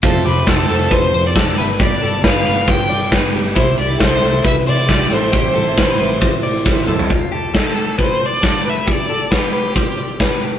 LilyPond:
<<
  \new Staff \with { instrumentName = "Violin" } { \time 4/4 \key f \lydian \tempo 4 = 136 a'8 b'8 a'4 c''8. d''8. e''8 | d''4 f''4 g''4 r4 | c''8 d''8 c''4 e''8 d''4 c''8~ | c''2.~ c''8 r8 |
r8 a'8 a'4 c''8 d''4 e''8 | d''4 g'2~ g'8 r8 | }
  \new Staff \with { instrumentName = "Clean electric guitar" } { \time 4/4 \key f \lydian f'8 g'8 a'8 a'8 b'8 c''8 a'8 b'8 | g'8 a'8 b'8 b'8 c''8 d''8 b'8 g'8 | e'8 g'8 a'8 a'8 b'8 c''8 g'8 a'8 | g'8 a'8 b'8 b'8 c''8 d''8 c''8 a'8 |
f'8 g'8 a'8 a'8 b'8 c''8 a'8 b'8 | g'8 a'8 b'8 b'8 c''8 d''8 b'8 g'8 | }
  \new Staff \with { instrumentName = "Twelve-string acoustic guitar" } { \clef bass \time 4/4 \key f \lydian <f, c f a c'>8 <c f a c'>16 <f a c'>8. <c f a c'>4. <c f a c'>8 <d g b d'>8 | <g, d g b d'>8 <d g b d'>16 <g b d'>8. <d g b d'>4. <d g b d'>8 <d g b d'>8 | <c e g d' e'>8 <e g d' e'>16 <g d' e'>8. <e g d' e'>4. <e g d' e'>8 <e g c' e'>8 | <a, e g c' e'>8 <e g c' e'>16 <g c' e'>8. <e g c' e'>4. <e g c' e'>8 <e g c' e'>8 |
r1 | r1 | }
  \new Staff \with { instrumentName = "Fingered electric bass" } { \clef bass \time 4/4 \key f \lydian f,,8 f,,8 f,,8 f,,8 f,,8 f,8 r8 g,,8~ | g,,8 g,,8 g,,8 g,,8 g,,8 g,8 g,,8 g,,8 | c,8 c,8 c,8 c,8 c,8 c8 c,8 a,,8~ | a,,8 a,,8 r8 a,,8 a,,8 a,8 a,,8 a,,8 |
r1 | r1 | }
  \new DrumStaff \with { instrumentName = "Drums" } \drummode { \time 4/4 <hh bd>8 hho8 <hh bd sn>8 hho8 <hh bd>8 hho8 <hh bd sn>8 hho8 | <hh bd>8 hho8 <hh bd sn>8 hho8 <hh bd>8 hho8 <hh bd sn>8 hho8 | <hh bd>8 hho8 <hh bd sn>8 hho8 <hh bd>8 hho8 <hh bd sn>8 hho8 | <hh bd>8 hho8 <hh bd sn>8 hho8 <hh bd>8 hho8 <bd sn>8 toml16 tomfh16 |
<hh bd>4 <hh bd sn>4 <hh bd>4 <hh bd sn>4 | <hh bd>4 <hh bd sn>4 <hh bd>4 <hh bd sn>4 | }
>>